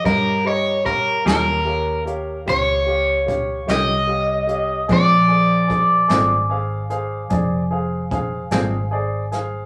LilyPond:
<<
  \new Staff \with { instrumentName = "Overdriven electric guitar" } { \time 12/8 \key ees \major \tempo 4. = 50 bes'8 des''8 bes'8 bes'4 r8 des''4. ees''4. | d''1 r2 | }
  \new Staff \with { instrumentName = "Grand piano" } { \time 12/8 \key ees \major <g' des'' f''>8 <g' des'' ees''>8 <g' des'' f''>8 <g' des'' f''>8 <g' des'' f''>8 <g' des'' f''>8 <g' des'' f''>8 <g' des'' f''>8 <g' des'' f''>8 <g' des'' ees''>8 <g' des'' f''>8 <g' des'' f''>8 | <aes' c'' d''>8 <aes' c'' d''>8 <aes' c'' d''>8 <aes' c'' d''>8 <aes' c'' f''>8 <aes' c'' f''>8 <aes' c'' d''>8 <aes' c'' f''>8 <aes' c'' f''>8 <aes' c'' f''>8 <aes' c'' d''>8 <aes' c'' f''>8 | }
  \new Staff \with { instrumentName = "Clean electric guitar" } { \time 12/8 \key ees \major r4. <ees des' f' g'>8 r2 r8 <ees des' f' g'>8 r4 | <bes, aes c' d'>8 r4 <bes, aes c' d'>8 r2 r8 <bes, aes c' d'>8 r4 | }
  \new Staff \with { instrumentName = "Fingered electric bass" } { \clef bass \time 12/8 \key ees \major g,4. ees,4. des,4. c,4. | bes,,4. aes,,4. f,,4. aes,,4. | }
  \new DrumStaff \with { instrumentName = "Drums" } \drummode { \time 12/8 <hh bd>4 <hh bd>8 <hh sn>4 hh8 <hh bd>4 <hh bd>8 <hh sn>4 hh8 | <hh bd>4 <hh bd>8 <hh sn>4 hh8 <hh bd>4 <hh bd>8 <hh sn>4 <hh sn>8 | }
>>